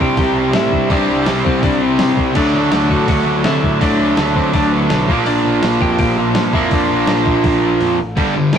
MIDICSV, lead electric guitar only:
0, 0, Header, 1, 2, 480
1, 0, Start_track
1, 0, Tempo, 363416
1, 1197, Time_signature, 4, 2, 24, 8
1, 11335, End_track
2, 0, Start_track
2, 0, Title_t, "Lead electric guitar"
2, 0, Program_c, 0, 29
2, 13, Note_on_c, 0, 67, 81
2, 20, Note_on_c, 0, 79, 102
2, 220, Note_off_c, 0, 79, 0
2, 224, Note_off_c, 0, 67, 0
2, 238, Note_on_c, 0, 67, 72
2, 239, Note_on_c, 0, 79, 81
2, 684, Note_off_c, 0, 67, 0
2, 725, Note_off_c, 0, 79, 0
2, 729, Note_on_c, 0, 64, 70
2, 730, Note_on_c, 0, 76, 99
2, 1169, Note_off_c, 0, 64, 0
2, 1205, Note_on_c, 0, 74, 98
2, 1216, Note_on_c, 0, 62, 77
2, 1218, Note_off_c, 0, 76, 0
2, 1649, Note_off_c, 0, 74, 0
2, 1654, Note_off_c, 0, 62, 0
2, 1928, Note_on_c, 0, 60, 69
2, 1929, Note_on_c, 0, 72, 81
2, 2146, Note_off_c, 0, 72, 0
2, 2148, Note_off_c, 0, 60, 0
2, 2166, Note_on_c, 0, 74, 96
2, 2174, Note_on_c, 0, 62, 74
2, 2390, Note_off_c, 0, 62, 0
2, 2401, Note_on_c, 0, 60, 78
2, 2405, Note_off_c, 0, 74, 0
2, 2405, Note_on_c, 0, 72, 87
2, 2849, Note_off_c, 0, 60, 0
2, 2881, Note_off_c, 0, 72, 0
2, 3118, Note_on_c, 0, 62, 76
2, 3127, Note_on_c, 0, 74, 77
2, 3790, Note_off_c, 0, 62, 0
2, 3835, Note_on_c, 0, 66, 73
2, 3838, Note_on_c, 0, 78, 83
2, 3864, Note_off_c, 0, 74, 0
2, 4063, Note_off_c, 0, 66, 0
2, 4065, Note_off_c, 0, 78, 0
2, 4081, Note_on_c, 0, 78, 93
2, 4087, Note_on_c, 0, 66, 77
2, 4531, Note_off_c, 0, 66, 0
2, 4550, Note_off_c, 0, 78, 0
2, 4555, Note_on_c, 0, 76, 93
2, 4567, Note_on_c, 0, 64, 76
2, 5011, Note_off_c, 0, 64, 0
2, 5047, Note_on_c, 0, 74, 101
2, 5054, Note_off_c, 0, 76, 0
2, 5055, Note_on_c, 0, 62, 74
2, 5491, Note_off_c, 0, 74, 0
2, 5496, Note_off_c, 0, 62, 0
2, 5763, Note_on_c, 0, 72, 88
2, 5773, Note_on_c, 0, 60, 65
2, 5991, Note_off_c, 0, 60, 0
2, 5991, Note_off_c, 0, 72, 0
2, 5996, Note_on_c, 0, 74, 97
2, 6012, Note_on_c, 0, 62, 73
2, 6231, Note_off_c, 0, 62, 0
2, 6231, Note_off_c, 0, 74, 0
2, 6231, Note_on_c, 0, 71, 96
2, 6240, Note_on_c, 0, 59, 68
2, 6687, Note_off_c, 0, 59, 0
2, 6716, Note_off_c, 0, 71, 0
2, 6957, Note_on_c, 0, 74, 99
2, 6970, Note_on_c, 0, 62, 77
2, 7405, Note_off_c, 0, 74, 0
2, 7412, Note_off_c, 0, 62, 0
2, 7682, Note_on_c, 0, 79, 101
2, 7691, Note_on_c, 0, 67, 77
2, 7896, Note_off_c, 0, 79, 0
2, 7906, Note_off_c, 0, 67, 0
2, 7912, Note_on_c, 0, 79, 97
2, 7922, Note_on_c, 0, 67, 75
2, 8144, Note_off_c, 0, 67, 0
2, 8158, Note_off_c, 0, 79, 0
2, 8158, Note_on_c, 0, 77, 104
2, 8170, Note_on_c, 0, 65, 81
2, 8611, Note_off_c, 0, 65, 0
2, 8640, Note_off_c, 0, 77, 0
2, 8646, Note_on_c, 0, 76, 83
2, 8653, Note_on_c, 0, 64, 70
2, 8869, Note_off_c, 0, 64, 0
2, 8889, Note_off_c, 0, 76, 0
2, 8898, Note_on_c, 0, 62, 65
2, 8905, Note_on_c, 0, 74, 72
2, 10273, Note_off_c, 0, 62, 0
2, 10273, Note_off_c, 0, 74, 0
2, 11335, End_track
0, 0, End_of_file